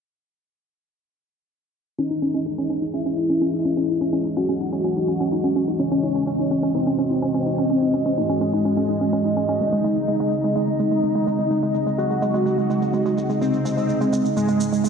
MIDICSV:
0, 0, Header, 1, 5, 480
1, 0, Start_track
1, 0, Key_signature, 4, "minor"
1, 0, Tempo, 476190
1, 2001, Time_signature, 4, 2, 24, 8
1, 15012, End_track
2, 0, Start_track
2, 0, Title_t, "Analog synth lead"
2, 0, Program_c, 0, 81
2, 2001, Note_on_c, 0, 63, 106
2, 2866, Note_off_c, 0, 63, 0
2, 2960, Note_on_c, 0, 64, 104
2, 4306, Note_off_c, 0, 64, 0
2, 4401, Note_on_c, 0, 66, 99
2, 5746, Note_off_c, 0, 66, 0
2, 5841, Note_on_c, 0, 61, 104
2, 6706, Note_off_c, 0, 61, 0
2, 6800, Note_on_c, 0, 60, 103
2, 8241, Note_on_c, 0, 56, 102
2, 8256, Note_off_c, 0, 60, 0
2, 9680, Note_on_c, 0, 63, 100
2, 9695, Note_off_c, 0, 56, 0
2, 10546, Note_off_c, 0, 63, 0
2, 10642, Note_on_c, 0, 63, 102
2, 11986, Note_off_c, 0, 63, 0
2, 12078, Note_on_c, 0, 66, 102
2, 13425, Note_off_c, 0, 66, 0
2, 13521, Note_on_c, 0, 60, 108
2, 14386, Note_off_c, 0, 60, 0
2, 14482, Note_on_c, 0, 56, 100
2, 15012, Note_off_c, 0, 56, 0
2, 15012, End_track
3, 0, Start_track
3, 0, Title_t, "Analog synth pad"
3, 0, Program_c, 1, 89
3, 2000, Note_on_c, 1, 68, 68
3, 2001, Note_on_c, 1, 56, 77
3, 2001, Note_on_c, 1, 75, 80
3, 2002, Note_on_c, 1, 52, 71
3, 5802, Note_off_c, 1, 68, 0
3, 5841, Note_on_c, 1, 66, 70
3, 9641, Note_off_c, 1, 52, 0
3, 9641, Note_off_c, 1, 56, 0
3, 9642, Note_off_c, 1, 66, 0
3, 9679, Note_on_c, 1, 68, 69
3, 9680, Note_on_c, 1, 49, 80
3, 9681, Note_on_c, 1, 60, 70
3, 9681, Note_on_c, 1, 63, 73
3, 15012, Note_off_c, 1, 49, 0
3, 15012, Note_off_c, 1, 60, 0
3, 15012, Note_off_c, 1, 63, 0
3, 15012, Note_off_c, 1, 68, 0
3, 15012, Note_off_c, 1, 75, 0
3, 15012, End_track
4, 0, Start_track
4, 0, Title_t, "Synth pluck"
4, 0, Program_c, 2, 84
4, 2000, Note_on_c, 2, 61, 90
4, 2088, Note_off_c, 2, 61, 0
4, 2123, Note_on_c, 2, 63, 71
4, 2174, Note_off_c, 2, 63, 0
4, 2239, Note_on_c, 2, 61, 99
4, 2293, Note_off_c, 2, 61, 0
4, 2362, Note_on_c, 2, 61, 92
4, 2448, Note_off_c, 2, 61, 0
4, 2481, Note_on_c, 2, 63, 78
4, 2534, Note_off_c, 2, 63, 0
4, 2603, Note_on_c, 2, 61, 103
4, 2654, Note_off_c, 2, 61, 0
4, 2720, Note_on_c, 2, 61, 94
4, 2808, Note_off_c, 2, 61, 0
4, 2842, Note_on_c, 2, 63, 73
4, 2893, Note_off_c, 2, 63, 0
4, 2960, Note_on_c, 2, 61, 96
4, 3013, Note_off_c, 2, 61, 0
4, 3082, Note_on_c, 2, 61, 90
4, 3168, Note_off_c, 2, 61, 0
4, 3200, Note_on_c, 2, 63, 68
4, 3253, Note_off_c, 2, 63, 0
4, 3322, Note_on_c, 2, 61, 87
4, 3374, Note_off_c, 2, 61, 0
4, 3441, Note_on_c, 2, 61, 99
4, 3529, Note_off_c, 2, 61, 0
4, 3562, Note_on_c, 2, 63, 73
4, 3614, Note_off_c, 2, 63, 0
4, 3681, Note_on_c, 2, 61, 96
4, 3734, Note_off_c, 2, 61, 0
4, 3801, Note_on_c, 2, 61, 94
4, 3888, Note_off_c, 2, 61, 0
4, 3920, Note_on_c, 2, 63, 71
4, 3973, Note_off_c, 2, 63, 0
4, 4042, Note_on_c, 2, 61, 93
4, 4094, Note_off_c, 2, 61, 0
4, 4161, Note_on_c, 2, 61, 98
4, 4249, Note_off_c, 2, 61, 0
4, 4283, Note_on_c, 2, 63, 75
4, 4334, Note_off_c, 2, 63, 0
4, 4401, Note_on_c, 2, 61, 97
4, 4454, Note_off_c, 2, 61, 0
4, 4524, Note_on_c, 2, 61, 97
4, 4609, Note_off_c, 2, 61, 0
4, 4642, Note_on_c, 2, 63, 71
4, 4694, Note_off_c, 2, 63, 0
4, 4763, Note_on_c, 2, 61, 98
4, 4814, Note_off_c, 2, 61, 0
4, 4883, Note_on_c, 2, 61, 94
4, 4969, Note_off_c, 2, 61, 0
4, 5005, Note_on_c, 2, 63, 69
4, 5055, Note_off_c, 2, 63, 0
4, 5123, Note_on_c, 2, 61, 88
4, 5174, Note_off_c, 2, 61, 0
4, 5244, Note_on_c, 2, 61, 96
4, 5329, Note_off_c, 2, 61, 0
4, 5362, Note_on_c, 2, 63, 78
4, 5414, Note_off_c, 2, 63, 0
4, 5483, Note_on_c, 2, 61, 91
4, 5534, Note_off_c, 2, 61, 0
4, 5603, Note_on_c, 2, 61, 97
4, 5690, Note_off_c, 2, 61, 0
4, 5724, Note_on_c, 2, 63, 74
4, 5775, Note_off_c, 2, 63, 0
4, 5842, Note_on_c, 2, 61, 87
4, 5894, Note_off_c, 2, 61, 0
4, 5963, Note_on_c, 2, 61, 94
4, 6049, Note_off_c, 2, 61, 0
4, 6081, Note_on_c, 2, 63, 76
4, 6134, Note_off_c, 2, 63, 0
4, 6203, Note_on_c, 2, 61, 100
4, 6254, Note_off_c, 2, 61, 0
4, 6322, Note_on_c, 2, 61, 99
4, 6409, Note_off_c, 2, 61, 0
4, 6444, Note_on_c, 2, 63, 75
4, 6495, Note_off_c, 2, 63, 0
4, 6562, Note_on_c, 2, 61, 98
4, 6614, Note_off_c, 2, 61, 0
4, 6684, Note_on_c, 2, 61, 100
4, 6769, Note_off_c, 2, 61, 0
4, 6801, Note_on_c, 2, 63, 81
4, 6854, Note_off_c, 2, 63, 0
4, 6923, Note_on_c, 2, 61, 90
4, 6974, Note_off_c, 2, 61, 0
4, 7042, Note_on_c, 2, 61, 88
4, 7129, Note_off_c, 2, 61, 0
4, 7162, Note_on_c, 2, 63, 67
4, 7214, Note_off_c, 2, 63, 0
4, 7281, Note_on_c, 2, 61, 102
4, 7334, Note_off_c, 2, 61, 0
4, 7402, Note_on_c, 2, 61, 92
4, 7488, Note_off_c, 2, 61, 0
4, 7522, Note_on_c, 2, 63, 72
4, 7574, Note_off_c, 2, 63, 0
4, 7643, Note_on_c, 2, 61, 94
4, 7694, Note_off_c, 2, 61, 0
4, 7761, Note_on_c, 2, 61, 89
4, 7849, Note_off_c, 2, 61, 0
4, 7882, Note_on_c, 2, 63, 72
4, 7934, Note_off_c, 2, 63, 0
4, 8001, Note_on_c, 2, 61, 95
4, 8054, Note_off_c, 2, 61, 0
4, 8122, Note_on_c, 2, 61, 96
4, 8208, Note_off_c, 2, 61, 0
4, 8241, Note_on_c, 2, 63, 81
4, 8294, Note_off_c, 2, 63, 0
4, 8361, Note_on_c, 2, 61, 101
4, 8413, Note_off_c, 2, 61, 0
4, 8480, Note_on_c, 2, 61, 95
4, 8568, Note_off_c, 2, 61, 0
4, 8602, Note_on_c, 2, 63, 78
4, 8654, Note_off_c, 2, 63, 0
4, 8720, Note_on_c, 2, 61, 93
4, 8773, Note_off_c, 2, 61, 0
4, 8841, Note_on_c, 2, 61, 90
4, 8928, Note_off_c, 2, 61, 0
4, 8960, Note_on_c, 2, 63, 70
4, 9013, Note_off_c, 2, 63, 0
4, 9082, Note_on_c, 2, 61, 86
4, 9134, Note_off_c, 2, 61, 0
4, 9202, Note_on_c, 2, 61, 97
4, 9289, Note_off_c, 2, 61, 0
4, 9324, Note_on_c, 2, 63, 70
4, 9375, Note_off_c, 2, 63, 0
4, 9442, Note_on_c, 2, 61, 94
4, 9494, Note_off_c, 2, 61, 0
4, 9563, Note_on_c, 2, 61, 99
4, 9649, Note_off_c, 2, 61, 0
4, 9683, Note_on_c, 2, 56, 71
4, 9734, Note_off_c, 2, 56, 0
4, 9803, Note_on_c, 2, 56, 97
4, 9854, Note_off_c, 2, 56, 0
4, 9922, Note_on_c, 2, 56, 100
4, 10009, Note_off_c, 2, 56, 0
4, 10044, Note_on_c, 2, 56, 70
4, 10095, Note_off_c, 2, 56, 0
4, 10161, Note_on_c, 2, 56, 99
4, 10214, Note_off_c, 2, 56, 0
4, 10283, Note_on_c, 2, 56, 102
4, 10368, Note_off_c, 2, 56, 0
4, 10401, Note_on_c, 2, 56, 73
4, 10454, Note_off_c, 2, 56, 0
4, 10523, Note_on_c, 2, 56, 103
4, 10574, Note_off_c, 2, 56, 0
4, 10641, Note_on_c, 2, 56, 96
4, 10729, Note_off_c, 2, 56, 0
4, 10763, Note_on_c, 2, 56, 66
4, 10814, Note_off_c, 2, 56, 0
4, 10881, Note_on_c, 2, 56, 90
4, 10934, Note_off_c, 2, 56, 0
4, 11002, Note_on_c, 2, 56, 87
4, 11088, Note_off_c, 2, 56, 0
4, 11120, Note_on_c, 2, 56, 82
4, 11173, Note_off_c, 2, 56, 0
4, 11241, Note_on_c, 2, 56, 96
4, 11293, Note_off_c, 2, 56, 0
4, 11360, Note_on_c, 2, 56, 94
4, 11448, Note_off_c, 2, 56, 0
4, 11480, Note_on_c, 2, 56, 77
4, 11533, Note_off_c, 2, 56, 0
4, 11599, Note_on_c, 2, 56, 88
4, 11652, Note_off_c, 2, 56, 0
4, 11720, Note_on_c, 2, 56, 91
4, 11807, Note_off_c, 2, 56, 0
4, 11839, Note_on_c, 2, 56, 73
4, 11893, Note_off_c, 2, 56, 0
4, 11960, Note_on_c, 2, 56, 95
4, 12013, Note_off_c, 2, 56, 0
4, 12078, Note_on_c, 2, 56, 91
4, 12167, Note_off_c, 2, 56, 0
4, 12201, Note_on_c, 2, 56, 77
4, 12253, Note_off_c, 2, 56, 0
4, 12319, Note_on_c, 2, 56, 98
4, 12373, Note_off_c, 2, 56, 0
4, 12440, Note_on_c, 2, 56, 101
4, 12527, Note_off_c, 2, 56, 0
4, 12559, Note_on_c, 2, 56, 80
4, 12613, Note_off_c, 2, 56, 0
4, 12680, Note_on_c, 2, 56, 89
4, 12733, Note_off_c, 2, 56, 0
4, 12799, Note_on_c, 2, 56, 94
4, 12888, Note_off_c, 2, 56, 0
4, 12921, Note_on_c, 2, 56, 73
4, 12973, Note_off_c, 2, 56, 0
4, 13040, Note_on_c, 2, 56, 98
4, 13093, Note_off_c, 2, 56, 0
4, 13161, Note_on_c, 2, 56, 101
4, 13247, Note_off_c, 2, 56, 0
4, 13279, Note_on_c, 2, 56, 75
4, 13333, Note_off_c, 2, 56, 0
4, 13401, Note_on_c, 2, 56, 97
4, 13453, Note_off_c, 2, 56, 0
4, 13520, Note_on_c, 2, 56, 91
4, 13608, Note_off_c, 2, 56, 0
4, 13641, Note_on_c, 2, 56, 72
4, 13693, Note_off_c, 2, 56, 0
4, 13760, Note_on_c, 2, 56, 96
4, 13813, Note_off_c, 2, 56, 0
4, 13882, Note_on_c, 2, 56, 99
4, 13968, Note_off_c, 2, 56, 0
4, 14001, Note_on_c, 2, 56, 75
4, 14054, Note_off_c, 2, 56, 0
4, 14122, Note_on_c, 2, 56, 101
4, 14174, Note_off_c, 2, 56, 0
4, 14241, Note_on_c, 2, 56, 98
4, 14329, Note_off_c, 2, 56, 0
4, 14363, Note_on_c, 2, 56, 72
4, 14414, Note_off_c, 2, 56, 0
4, 14482, Note_on_c, 2, 56, 98
4, 14534, Note_off_c, 2, 56, 0
4, 14602, Note_on_c, 2, 56, 98
4, 14688, Note_off_c, 2, 56, 0
4, 14721, Note_on_c, 2, 56, 69
4, 14774, Note_off_c, 2, 56, 0
4, 14842, Note_on_c, 2, 56, 93
4, 14894, Note_off_c, 2, 56, 0
4, 14960, Note_on_c, 2, 56, 99
4, 15012, Note_off_c, 2, 56, 0
4, 15012, End_track
5, 0, Start_track
5, 0, Title_t, "Drums"
5, 9681, Note_on_c, 9, 82, 49
5, 9781, Note_off_c, 9, 82, 0
5, 9808, Note_on_c, 9, 82, 21
5, 9909, Note_off_c, 9, 82, 0
5, 9929, Note_on_c, 9, 82, 85
5, 10030, Note_off_c, 9, 82, 0
5, 10042, Note_on_c, 9, 82, 33
5, 10143, Note_off_c, 9, 82, 0
5, 10161, Note_on_c, 9, 82, 46
5, 10262, Note_off_c, 9, 82, 0
5, 10283, Note_on_c, 9, 82, 21
5, 10384, Note_off_c, 9, 82, 0
5, 10403, Note_on_c, 9, 82, 85
5, 10503, Note_off_c, 9, 82, 0
5, 10525, Note_on_c, 9, 82, 35
5, 10626, Note_off_c, 9, 82, 0
5, 10641, Note_on_c, 9, 82, 48
5, 10742, Note_off_c, 9, 82, 0
5, 10755, Note_on_c, 9, 82, 21
5, 10856, Note_off_c, 9, 82, 0
5, 10881, Note_on_c, 9, 82, 81
5, 10981, Note_off_c, 9, 82, 0
5, 11010, Note_on_c, 9, 82, 38
5, 11111, Note_off_c, 9, 82, 0
5, 11119, Note_on_c, 9, 82, 47
5, 11219, Note_off_c, 9, 82, 0
5, 11248, Note_on_c, 9, 82, 25
5, 11349, Note_off_c, 9, 82, 0
5, 11367, Note_on_c, 9, 82, 82
5, 11467, Note_off_c, 9, 82, 0
5, 11484, Note_on_c, 9, 82, 37
5, 11585, Note_off_c, 9, 82, 0
5, 11605, Note_on_c, 9, 82, 43
5, 11706, Note_off_c, 9, 82, 0
5, 11727, Note_on_c, 9, 82, 23
5, 11828, Note_off_c, 9, 82, 0
5, 11838, Note_on_c, 9, 82, 83
5, 11939, Note_off_c, 9, 82, 0
5, 11967, Note_on_c, 9, 82, 35
5, 12067, Note_off_c, 9, 82, 0
5, 12081, Note_on_c, 9, 82, 45
5, 12182, Note_off_c, 9, 82, 0
5, 12201, Note_on_c, 9, 82, 23
5, 12302, Note_off_c, 9, 82, 0
5, 12319, Note_on_c, 9, 82, 76
5, 12420, Note_off_c, 9, 82, 0
5, 12442, Note_on_c, 9, 82, 36
5, 12543, Note_off_c, 9, 82, 0
5, 12563, Note_on_c, 9, 82, 46
5, 12664, Note_off_c, 9, 82, 0
5, 12680, Note_on_c, 9, 82, 23
5, 12781, Note_off_c, 9, 82, 0
5, 12805, Note_on_c, 9, 82, 73
5, 12906, Note_off_c, 9, 82, 0
5, 12922, Note_on_c, 9, 82, 34
5, 13023, Note_off_c, 9, 82, 0
5, 13036, Note_on_c, 9, 82, 45
5, 13137, Note_off_c, 9, 82, 0
5, 13161, Note_on_c, 9, 82, 22
5, 13262, Note_off_c, 9, 82, 0
5, 13284, Note_on_c, 9, 82, 71
5, 13385, Note_off_c, 9, 82, 0
5, 13400, Note_on_c, 9, 82, 35
5, 13501, Note_off_c, 9, 82, 0
5, 13526, Note_on_c, 9, 82, 41
5, 13627, Note_off_c, 9, 82, 0
5, 13641, Note_on_c, 9, 82, 20
5, 13742, Note_off_c, 9, 82, 0
5, 13766, Note_on_c, 9, 82, 89
5, 13867, Note_off_c, 9, 82, 0
5, 13887, Note_on_c, 9, 82, 30
5, 13988, Note_off_c, 9, 82, 0
5, 14002, Note_on_c, 9, 82, 44
5, 14103, Note_off_c, 9, 82, 0
5, 14124, Note_on_c, 9, 82, 21
5, 14224, Note_off_c, 9, 82, 0
5, 14244, Note_on_c, 9, 82, 81
5, 14345, Note_off_c, 9, 82, 0
5, 14363, Note_on_c, 9, 82, 33
5, 14464, Note_off_c, 9, 82, 0
5, 14485, Note_on_c, 9, 82, 43
5, 14586, Note_off_c, 9, 82, 0
5, 14598, Note_on_c, 9, 82, 22
5, 14698, Note_off_c, 9, 82, 0
5, 14720, Note_on_c, 9, 82, 75
5, 14821, Note_off_c, 9, 82, 0
5, 14847, Note_on_c, 9, 82, 35
5, 14948, Note_off_c, 9, 82, 0
5, 14964, Note_on_c, 9, 82, 46
5, 15012, Note_off_c, 9, 82, 0
5, 15012, End_track
0, 0, End_of_file